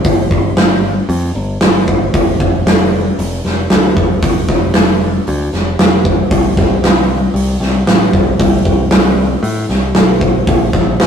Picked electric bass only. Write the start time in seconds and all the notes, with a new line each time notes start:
0.05 G1
0.31 G1
0.57 G1
1.09 F2
1.35 G1
1.62 G1
2.14 F1
2.41 F1
2.66 F1
3.19 F1
3.45 F1
3.71 D2
3.97 F1
4.23 F1
4.49 F1
4.76 F1
5.28 D2
5.53 F1
5.80 F1
6.31 C2
6.57 C2
6.83 C2
7.34 C2
7.60 C2
7.86 A1
8.14 C2
8.40 C2
8.65 C2
8.92 C2
9.43 A2
9.70 C2
9.95 B1
10.48 A#1
10.74 A#1
11.00 A#1